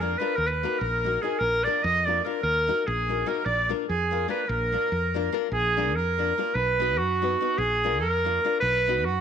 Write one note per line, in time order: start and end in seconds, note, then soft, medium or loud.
0.00 0.15 F2 medium
0.00 0.15 A#3 medium
0.00 0.15 D4 soft
0.00 0.16 F4 soft
0.00 0.20 A#4 medium
0.00 0.19 A#4 medium
0.00 0.16 A#4 medium
0.18 0.34 A#3 medium
0.18 0.34 D4 medium
0.18 0.34 F4 soft
0.18 0.34 A#4 medium
0.18 0.37 B4 medium
0.18 0.38 B4 medium
0.36 0.64 D#2 medium
0.36 0.49 A#4 loud
0.36 0.50 A#4 medium
0.47 0.80 B4 medium
0.47 0.82 B4 medium
0.63 0.77 A#3 medium
0.63 0.78 D#4 medium
0.63 0.78 F#4 medium
0.63 0.78 A#4 medium
0.79 1.17 A#1 medium
0.79 1.23 A#4 medium
0.79 1.22 A#4 medium
1.04 1.18 A#3 soft
1.04 1.18 D#4 soft
1.04 1.19 F#4 soft
1.04 1.19 A#4 medium
1.22 1.36 A#3 medium
1.22 1.37 D#4 soft
1.22 1.37 F#4 medium
1.22 1.40 G#4 medium
1.22 1.41 G#4 medium
1.22 1.38 A#4 medium
1.38 1.67 A#1 medium
1.38 1.66 A#4 loud
1.38 1.66 A#4 medium
1.64 1.80 A#3 medium
1.64 1.80 D4 medium
1.64 1.80 F4 medium
1.64 1.81 A#4 medium
1.64 1.84 D5 medium
1.83 2.20 F2 loud
1.83 2.07 D#5 loud
2.05 2.21 A#3 medium
2.05 2.21 D4 soft
2.05 2.21 F4 soft
2.05 2.22 A#4 medium
2.05 2.24 D5 medium
2.05 2.26 D5 medium
2.25 2.39 A#3 medium
2.25 2.39 D4 medium
2.25 2.39 F4 medium
2.25 2.42 A#4 medium
2.25 2.43 A#4 medium
2.25 2.40 A#4 medium
2.43 2.69 D#2 medium
2.43 2.88 A#4 loud
2.43 2.84 A#4 medium
2.67 2.82 A#3 medium
2.67 2.83 D#4 medium
2.67 2.83 F#4 medium
2.67 2.83 A#4 medium
2.87 3.23 A#1 loud
2.87 3.29 G#4 medium
2.87 3.28 G#4 medium
3.09 3.23 A#3 soft
3.09 3.23 D#4 soft
3.09 3.23 F#4 soft
3.09 3.24 A#4 medium
3.26 3.41 A#3 medium
3.26 3.41 D#4 medium
3.26 3.42 F#4 medium
3.26 3.47 A#4 medium
3.26 3.46 A#4 medium
3.26 3.42 A#4 medium
3.45 3.72 A#1 medium
3.45 3.70 D5 loud
3.45 3.70 D5 medium
3.69 3.85 A#3 medium
3.69 3.85 D4 soft
3.69 3.85 F4 medium
3.69 3.85 A#4 medium
3.89 4.25 F2 medium
3.89 4.27 G#4 medium
4.11 4.26 A#3 soft
4.11 4.26 D4 medium
4.11 4.26 F4 medium
4.11 4.26 A#4 medium
4.28 4.43 A#3 medium
4.28 4.44 D4 medium
4.28 4.44 F4 medium
4.28 4.44 A#4 medium
4.28 4.50 B4 medium
4.28 4.48 B4 medium
4.48 4.75 A#1 medium
4.48 5.33 A#4 loud
4.48 5.34 A#4 medium
4.72 4.88 A#3 medium
4.72 4.88 D4 soft
4.72 4.88 F4 soft
4.72 4.89 A#4 medium
4.92 5.28 F2 medium
5.14 5.29 A#3 medium
5.14 5.29 D4 medium
5.14 5.29 F4 medium
5.14 5.30 A#4 medium
5.32 5.47 A#3 medium
5.32 5.47 D4 medium
5.32 5.48 F4 medium
5.32 5.48 A#4 medium
5.52 5.95 A#1 medium
5.52 5.97 G#4 loud
5.52 5.93 G#4 medium
5.77 5.92 A#3 medium
5.77 5.92 D4 medium
5.77 5.92 F4 medium
5.77 5.92 A#4 medium
5.95 6.31 F2 medium
5.95 6.56 A#4 medium
6.18 6.32 A#3 soft
6.18 6.33 D4 medium
6.18 6.33 F4 soft
6.18 6.33 A#4 medium
6.38 6.52 A#3 medium
6.38 6.52 D4 medium
6.38 6.52 F4 medium
6.38 6.52 A#4 medium
6.55 6.99 B1 medium
6.55 6.99 B4 loud
6.55 7.00 B4 medium
6.80 6.95 B3 medium
6.80 6.95 D#4 medium
6.80 6.95 F#4 medium
6.80 6.96 B4 medium
6.98 7.35 F#2 medium
6.98 7.60 F#4 medium
6.98 7.59 F#4 medium
7.22 7.36 B3 medium
7.22 7.36 D#4 medium
7.22 7.36 F#4 soft
7.22 7.37 B4 medium
7.41 7.55 B3 medium
7.41 7.55 D#4 medium
7.41 7.55 F#4 medium
7.41 7.56 B4 medium
7.58 8.02 A#1 medium
7.58 8.00 G#4 loud
7.58 8.03 G#4 medium
7.84 7.99 A#3 medium
7.84 7.99 D4 medium
7.84 7.99 F4 medium
7.84 8.00 A#4 medium
8.01 8.38 F2 loud
8.01 8.58 A#4 loud
8.01 8.58 A#4 medium
8.25 8.39 A#3 medium
8.25 8.40 D4 soft
8.25 8.40 F4 medium
8.25 8.40 A#4 medium
8.44 8.58 A#3 medium
8.44 8.59 D4 medium
8.44 8.59 F4 medium
8.44 8.59 A#4 medium
8.60 9.05 B1 medium
8.60 9.07 B4 loud
8.60 9.04 B4 medium
8.88 9.02 B3 medium
8.88 9.03 D#4 medium
8.88 9.03 F#4 medium
8.88 9.03 B4 medium
9.05 9.21 F#2 medium
9.05 9.21 F#4 medium